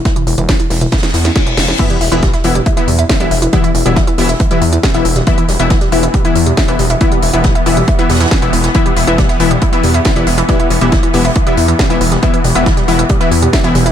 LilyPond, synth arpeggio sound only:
\new Staff \with { instrumentName = "Synth arpeggio sound" } { \clef bass \time 4/4 \key e \minor \tempo 4 = 138 e16 e16 e16 e16 e16 e16 e16 e16 e16 e16 e16 e16 e16 e16 e16 e16 | e16 g16 e'16 e16 g16 e'16 e16 g16 e'16 e16 g16 e'16 e16 g16 e'16 e16 | g16 e'16 e16 g16 e'16 e16 g16 e'16 e16 g16 e'16 e16 g16 e'16 e16 g16 | e'16 e16 g16 e'16 e16 g16 e'16 e16 g16 e'16 e16 g16 e'16 e16 g16 e'16 |
e16 g16 e'16 e16 g16 e'16 e16 g16 e'16 e16 g16 e16 e16 e16 e16 e16 | e16 g16 e'16 e16 g16 e'16 e16 g16 e'16 e16 g16 e'16 e16 g16 e'16 e16 | g16 e'16 e16 g16 e'16 e16 g16 e'16 e16 g16 e'16 e16 g16 e'16 e16 g16 | e'16 e16 g16 e'16 e16 g16 e'16 e16 g16 e'16 e16 g16 e'16 e16 g16 e'16 | }